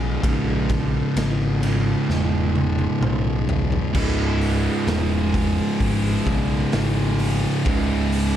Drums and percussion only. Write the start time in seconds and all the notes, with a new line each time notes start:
0.24 kick, ride
0.69 kick, ride
1.17 snare, ride
1.63 ride
2.10 snare
2.56 high tom
2.79 high tom
3.03 mid tom
3.49 floor tom
3.72 floor tom
3.95 kick, crash
4.41 open hi-hat
4.87 snare, open hi-hat
5.34 kick, open hi-hat
5.80 kick, open hi-hat
6.26 kick, open hi-hat
6.72 snare, open hi-hat
7.19 open hi-hat
7.65 kick, open hi-hat
8.12 open hi-hat